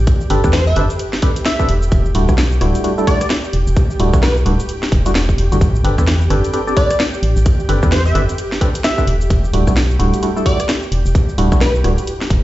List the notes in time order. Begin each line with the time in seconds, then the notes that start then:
Already playing: G4
0.07 kick, closed hi-hat, shaker
0.21 shaker
0.30 G1 C4 D4 G4 A4 B4, open hi-hat
0.44 E2 C4 D4 G4 A4 B4, kick, cross-stick, shaker
0.53 C5, snare, closed hi-hat, shaker
0.67 E5, shaker
0.76 G1 C4 D4 G4 A4 B4, open hi-hat
0.90 closed hi-hat, shaker
0.99 closed hi-hat, shaker
1.13 snare, shaker
1.22 C4 D4 G4 A4 B4, kick, open hi-hat
1.36 closed hi-hat, shaker
1.46 E5, snare, closed hi-hat, shaker
1.59 C4 D4 G4 A4 B4, kick, shaker
1.69 E1, open hi-hat
1.82 shaker
1.92 E1, kick, closed hi-hat, shaker
2.06 shaker
2.15 D1 G3 A3 D4 E4 F#4, open hi-hat
2.29 B1 G3 A3 D4 E4 F#4, kick, cross-stick, shaker
2.38 snare, closed hi-hat, shaker
2.52 shaker
2.61 D1 G3 A3 D4 E4 F#4, cross-stick, open hi-hat
2.75 closed hi-hat, shaker
2.84 G3 A3 D4 E4 F#4, closed hi-hat, shaker
2.98 G3 A3 D4 E4 A4, shaker
3.07 G3 A3 D4 E4 F#4 D5, kick, open hi-hat
3.21 cross-stick, closed hi-hat, shaker
3.30 snare, closed hi-hat, shaker
3.44 shaker
3.53 E1, open hi-hat
3.67 E1, shaker
3.77 kick, closed hi-hat, shaker
3.90 shaker
4.00 D1 G3 A3 D4 E4 F#4, open hi-hat
4.13 B1 G3 A3 D4 E4 F#4, kick, cross-stick, shaker
4.23 B4, snare, closed hi-hat, shaker
4.37 shaker
4.46 D1 G3 A3 D4 E4 F#4, open hi-hat
4.60 closed hi-hat, shaker
4.69 closed hi-hat, shaker
4.83 snare, shaker
4.92 E1, kick, open hi-hat
5.06 G3 A3 D4 E4 F#4, closed hi-hat, shaker
5.15 snare, closed hi-hat, shaker
5.29 kick, shaker
5.38 E1, open hi-hat
5.52 G1 G3 A3 D4 E4 F#4, closed hi-hat, shaker
5.61 A1, kick, closed hi-hat, shaker
5.75 shaker
5.84 G1 C4 D4 G4 A4 B4, open hi-hat
5.98 E2 C4 D4 G4 A4 B4, kick, cross-stick, shaker
6.07 snare, closed hi-hat, shaker
6.21 shaker
6.30 G1 C4 D4 G4 A4 B4, cross-stick, open hi-hat
6.44 closed hi-hat, shaker
6.53 C4 D4 G4 A4 B4, closed hi-hat, shaker
6.67 C4 D4 G4 A4 D5, shaker
6.76 C4 D4 G4 A4 B4 D5, kick, open hi-hat
6.91 cross-stick, closed hi-hat, shaker
7.00 snare, closed hi-hat, shaker
7.14 shaker
7.23 A1, open hi-hat
7.37 A1, shaker
7.46 kick, closed hi-hat, shaker
7.60 shaker
7.69 G1 C4 D4 G4 A4 B4, open hi-hat
7.83 E2 C4 D4 G4 A4 B4, kick, cross-stick, shaker
7.92 C5, snare, closed hi-hat, shaker
8.06 E5, shaker
8.15 G1 C4 D4 G4 A4 B4, open hi-hat
8.29 closed hi-hat, shaker
8.38 closed hi-hat, shaker
8.52 snare, shaker
8.61 C4 D4 G4 A4 B4, kick, open hi-hat
8.75 closed hi-hat, shaker
8.84 E5, snare, closed hi-hat, shaker
8.98 C4 D4 G4 A4 B4, kick, shaker
9.07 E1, open hi-hat
9.21 shaker
9.30 E1, kick, closed hi-hat, shaker
9.44 shaker
9.53 D1 G3 A3 D4 E4 F#4, open hi-hat
9.67 B1 G3 A3 D4 E4 F#4, kick, cross-stick, shaker
9.77 snare, closed hi-hat, shaker
9.90 shaker
9.99 D1 G3 A3 D4 E4 F#4, open hi-hat
10.14 closed hi-hat, shaker
10.23 G3 A3 D4 E4 F#4, closed hi-hat, shaker
10.36 G3 A3 D4 E4 A4, shaker
10.46 G3 A3 D4 E4 F#4 D5, kick, open hi-hat
10.60 cross-stick, closed hi-hat, shaker
10.69 snare, closed hi-hat, shaker
10.83 shaker
10.92 E1, open hi-hat
11.06 E1, shaker
11.15 kick, closed hi-hat, shaker
11.29 shaker
11.38 D1 G3 A3 D4 E4 F#4, open hi-hat
11.52 B1 G3 A3 D4 E4 F#4, kick, cross-stick, shaker
11.61 B4, snare, closed hi-hat, shaker
11.75 shaker
11.84 D1 G3 A3 D4 E4 F#4, cross-stick, open hi-hat
11.98 closed hi-hat, shaker
12.07 closed hi-hat, shaker
12.21 snare, shaker
12.30 E1, kick, open hi-hat